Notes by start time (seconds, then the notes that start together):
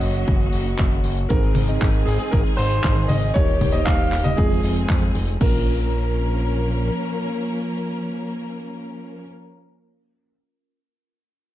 Already playing: C#3 F#3 A#3 C#4 F#4 C#5 D#5
0.01 F#1, open hi-hat, tambourine
0.14 closed hi-hat, tambourine
0.26 F#1, kick, closed hi-hat, tambourine
0.40 closed hi-hat
0.53 F#1, open hi-hat, tambourine
0.66 closed hi-hat, tambourine
0.78 F#1, kick, clap, closed hi-hat, tambourine
0.91 closed hi-hat
1.04 F#1, open hi-hat, tambourine
1.17 closed hi-hat, tambourine
1.29 G#1 D#3 G#3 C4 D#4 G#4 A#4 C5, kick, closed hi-hat, tambourine
1.43 closed hi-hat
1.55 G#1, open hi-hat, high tom, tambourine
1.68 C4 D#4 G#4 D#5, closed hi-hat, tambourine
1.82 G#1, kick, clap, closed hi-hat, tambourine
1.94 closed hi-hat
2.06 G#1 G#4, open hi-hat, tambourine
2.19 G#4, closed hi-hat, tambourine
2.31 G#1 A#4, kick, closed hi-hat, tambourine
2.46 closed hi-hat
2.57 G#1 C5, open hi-hat, tambourine
2.71 closed hi-hat, tambourine
2.84 G#1, kick, clap, closed hi-hat
2.97 closed hi-hat
3.08 G#1 D#5, open hi-hat, high tom, tambourine
3.22 closed hi-hat, tambourine
3.34 D#1 G3 A#3 D#4 G4 A#4 C#5, kick, closed hi-hat, tambourine
3.48 closed hi-hat
3.61 D#1, kick, open hi-hat, high tom, tambourine
3.72 A#3 D#4 G4 C5 D#5, closed hi-hat, tambourine
3.85 D#1 F5, kick, clap, closed hi-hat
4.00 closed hi-hat
4.12 D#1, clap, open hi-hat, tambourine
4.24 D#5, closed hi-hat, high tom, tambourine
4.37 F1 F3 G#3 C4 F4 G#4, kick, closed hi-hat, tambourine
4.52 open hi-hat
4.63 F1, open hi-hat, tambourine
4.76 closed hi-hat, tambourine
4.89 F2, kick, clap, closed hi-hat, tambourine
5.02 closed hi-hat
5.15 F1, open hi-hat, tambourine
5.28 closed hi-hat, tambourine
5.41 A#1 F3 A#3 C#4 F4 A#4, kick, crash